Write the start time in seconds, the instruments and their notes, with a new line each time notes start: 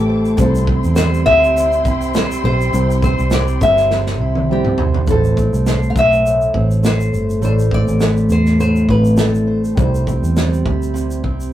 Already playing: fingered electric bass A1, steel-string acoustic guitar A2 A3 C4 E4, upright piano A3 C4 E4 C5, string section E4 C5 A5 D6, nylon-string guitar G4
0.09 steel-string acoustic guitar C5
0.25 shaker
0.36 fingered electric bass C2, steel-string acoustic guitar C3, upright piano G3 C4 E4 C5, string section E4 C5 G5 C6, nylon-string guitar A4, kick, shaker
0.55 shaker
0.67 steel-string acoustic guitar C4, kick
0.84 fingered electric bass E2, shaker
0.96 steel-string acoustic guitar G3, nylon-string guitar C5, snare, shaker
1.14 shaker
1.26 fingered electric bass D2, steel-string acoustic guitar C5, nylon-string guitar E5, kick
1.44 shaker
1.56 steel-string acoustic guitar C3, shaker
1.72 shaker
1.85 fingered electric bass C2, steel-string acoustic guitar E4, kick, shaker
2.02 shaker
2.14 steel-string acoustic guitar G3, nylon-string guitar C5, snare, shaker
2.31 shaker
2.44 fingered electric bass B1, steel-string acoustic guitar C5, nylon-string guitar C5
2.61 shaker
2.70 fingered electric bass C2, steel-string acoustic guitar C3, upright piano G3 C4 E4, shaker
2.74 upright piano C5
2.91 shaker
3.02 steel-string acoustic guitar C4, nylon-string guitar C5, kick, shaker
3.19 fingered electric bass C2, shaker
3.31 steel-string acoustic guitar G3, nylon-string guitar D5, snare, shaker
3.48 shaker
3.61 fingered electric bass G1, steel-string acoustic guitar C5, nylon-string guitar E5, kick, shaker
3.77 snare, shaker
3.91 steel-string acoustic guitar C3, snare
4.06 snare
4.21 fingered electric bass C2, steel-string acoustic guitar E4
4.35 high tom
4.49 upright piano G3 C4 E4 C5, steel-string acoustic guitar G3, nylon-string guitar G4
4.65 mid tom
4.78 steel-string acoustic guitar C5, floor tom
4.94 floor tom
5.06 fingered electric bass A1, steel-string acoustic guitar A2 C5, upright piano A3 E4 C5, kick, shaker
5.11 nylon-string guitar A4
5.24 shaker
5.37 steel-string acoustic guitar C4, kick, shaker
5.53 fingered electric bass C2, shaker
5.66 steel-string acoustic guitar A3, nylon-string guitar C5, snare, shaker
5.83 shaker
5.90 nylon-string guitar F5
5.95 fingered electric bass B1, steel-string acoustic guitar E4, nylon-string guitar E5, kick, shaker
6.13 shaker
6.25 steel-string acoustic guitar A2, shaker
6.41 shaker
6.54 fingered electric bass A1, steel-string acoustic guitar C4, kick
6.71 shaker
6.83 steel-string acoustic guitar A3, nylon-string guitar C5, snare, shaker
7.00 shaker
7.13 fingered electric bass G1, steel-string acoustic guitar C5, shaker
7.30 shaker
7.41 fingered electric bass A1, steel-string acoustic guitar A2 C5, upright piano A3 E4 D5, nylon-string guitar C5, shaker
7.59 shaker
7.71 steel-string acoustic guitar C4, nylon-string guitar D5, kick
7.88 fingered electric bass A1, shaker
8.00 steel-string acoustic guitar A3, snare, shaker
8.17 shaker
8.29 fingered electric bass E2, steel-string acoustic guitar E4, nylon-string guitar C5, shaker
8.46 snare, shaker
8.60 steel-string acoustic guitar A2, nylon-string guitar C5, shaker
8.76 shaker
8.89 fingered electric bass A1, steel-string acoustic guitar C4, nylon-string guitar B4, kick
9.05 shaker
9.17 upright piano A3 E4 D5, steel-string acoustic guitar A3, nylon-string guitar A4, snare, shaker
9.35 shaker
9.47 steel-string acoustic guitar C5
9.64 shaker
9.75 fingered electric bass C2, steel-string acoustic guitar C3 C5, upright piano G3 E4, kick, shaker
9.79 upright piano C5
9.95 shaker
10.07 steel-string acoustic guitar C4, kick, shaker
10.22 fingered electric bass E2, shaker
10.36 steel-string acoustic guitar G3, snare, shaker
10.53 shaker
10.65 fingered electric bass D2, steel-string acoustic guitar E4, kick
10.82 shaker
10.94 steel-string acoustic guitar C3, shaker
11.11 shaker
11.23 fingered electric bass C2, steel-string acoustic guitar C4, kick
11.41 shaker